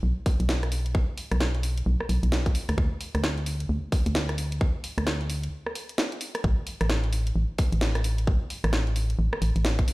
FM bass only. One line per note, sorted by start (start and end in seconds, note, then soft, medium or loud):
0.03 0.13 B1 medium
0.40 1.02 B1 medium
1.32 1.82 B1 medium
1.86 1.96 B1 medium
2.09 2.19 B1 medium
2.23 2.51 B1 medium
2.69 2.75 D2 medium
2.78 2.88 D2 medium
3.15 3.65 D2 medium
3.69 3.79 D2 medium
4.06 4.69 D2 medium
4.98 5.49 D2 medium
6.44 6.54 A1 medium
6.81 7.32 A1 medium
7.36 7.46 A1 medium
7.72 8.35 A1 medium
8.64 9.15 A1 medium
9.19 9.29 A1 loud
9.42 9.52 A1 medium
9.56 9.84 A1 medium